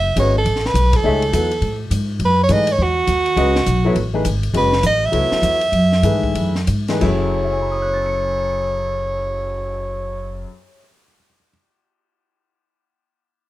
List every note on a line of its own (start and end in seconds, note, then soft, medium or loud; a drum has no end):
0.00 0.16 F#1 medium
0.00 0.16 E5 medium
0.16 0.44 G#1 medium
0.16 0.33 G#3 medium
0.16 0.33 C#4 soft
0.16 0.34 F#4 medium
0.16 0.34 B4 medium
0.16 0.35 C#5 medium
0.16 0.34 D#5 medium
0.16 hi-hat pedal medium
0.16 ride medium
0.38 0.68 A4 medium
0.45 0.74 A1 medium
0.45 ride medium
0.56 snare soft
0.66 0.97 B4 medium
0.66 snare soft
0.74 1.03 B1 medium
0.74 hi-hat pedal medium
0.74 ride medium
0.93 1.82 A4 medium
0.93 kick medium
0.93 ride medium
1.04 1.32 C#2 medium
1.04 1.20 A3 medium
1.04 1.20 D#4 medium
1.04 1.21 G#4 medium
1.04 1.21 C#5 medium
1.04 1.21 E5 medium
1.22 ride soft
1.33 1.61 E2 medium
1.33 1.49 F#3 soft
1.33 1.50 B3 soft
1.33 1.50 E4 soft
1.33 1.50 A4 soft
1.33 1.50 B4 medium
1.33 hi-hat pedal medium
1.33 ride medium
1.51 ride soft
1.61 1.90 A2 medium
1.61 ride medium
1.91 2.19 G#2 medium
1.91 hi-hat pedal medium
1.91 ride medium
2.19 2.48 F#2 medium
2.19 ride medium
2.25 2.40 B4 loud
2.43 2.54 C#5 medium
2.49 2.78 G#2 medium
2.49 2.66 E3 medium
2.49 2.66 A3 medium
2.49 2.66 D#4 medium
2.49 2.66 G#4 medium
2.49 2.67 B4 medium
2.49 2.73 D#5 loud
2.49 hi-hat pedal soft
2.49 ride medium
2.67 ride medium
2.72 2.84 C#5 medium
2.78 3.07 E2 medium
2.83 4.27 F#4 medium
3.07 3.36 D#2 medium
3.07 hi-hat pedal medium
3.07 ride medium
3.26 ride soft
3.36 3.65 C#2 medium
3.36 3.53 G#3 medium
3.36 3.53 C#4 medium
3.36 3.53 F#4 medium
3.36 3.54 B4 medium
3.36 3.54 D#5 medium
3.36 ride medium
3.56 snare medium
3.66 3.94 B1 medium
3.66 hi-hat pedal medium
3.66 ride medium
3.85 3.95 F#3 medium
3.85 3.95 B3 medium
3.85 3.95 E4 medium
3.85 3.95 A4 medium
3.85 3.95 C#5 medium
3.95 4.24 A1 medium
3.95 ride medium
4.14 4.24 E3 medium
4.14 4.24 A3 medium
4.14 4.24 D#4 medium
4.14 4.24 G#4 medium
4.14 4.24 B4 medium
4.25 4.53 G#1 medium
4.25 hi-hat pedal medium
4.25 ride medium
4.43 ride soft
4.54 4.82 F#1 medium
4.54 4.70 G#3 medium
4.54 4.70 C#4 medium
4.54 4.70 F#4 medium
4.54 4.71 B4 medium
4.54 4.83 B4 medium
4.54 4.71 D#5 medium
4.54 ride medium
4.73 snare soft
4.83 5.12 A1 medium
4.83 5.07 D#5 medium
4.83 hi-hat pedal medium
4.83 ride medium
5.05 6.70 E5 loud
5.12 5.30 C#2 medium
5.12 5.57 F#3 medium
5.12 5.58 B3 medium
5.12 5.58 E4 medium
5.12 5.58 A4 medium
5.12 5.58 C#5 medium
5.12 ride medium
5.31 muted upright bass stroke soft
5.31 snare soft
5.42 5.71 E2 medium
5.42 hi-hat pedal soft
5.42 ride medium
5.61 ride soft
5.72 6.02 F#2 medium
5.72 ride medium
5.92 snare soft
6.03 6.34 G#2 medium
6.03 6.52 D#3 medium
6.03 6.51 E3 medium
6.03 6.52 A3 medium
6.03 6.52 G#4 medium
6.03 6.52 B4 medium
6.03 hi-hat pedal medium
6.03 ride medium
6.23 kick medium
6.35 6.67 F#2 medium
6.35 ride medium
6.55 snare soft
6.67 7.01 G#2 medium
6.67 hi-hat pedal medium
6.67 ride medium
6.88 7.02 E3 medium
6.88 7.02 A3 medium
6.88 7.02 D#4 medium
6.88 7.01 G#4 medium
6.88 7.03 B4 medium
6.88 snare soft
6.88 ride soft
7.00 10.44 F#1 medium
7.00 10.47 F#2 medium
7.00 10.47 F#3 medium
7.00 10.48 E4 medium
7.00 10.49 G#4 medium
7.00 10.49 A4 medium
7.00 kick medium
7.00 crash medium
7.05 10.47 C#5 medium
7.23 cymbal swell soft
7.37 10.79 C#5 soft
7.44 10.86 E5 soft
7.52 10.94 G#5 soft
7.62 11.04 B5 soft
7.72 11.14 D#6 soft
7.82 11.24 F#6 soft
7.94 11.36 A6 soft
8.06 11.48 C#7 soft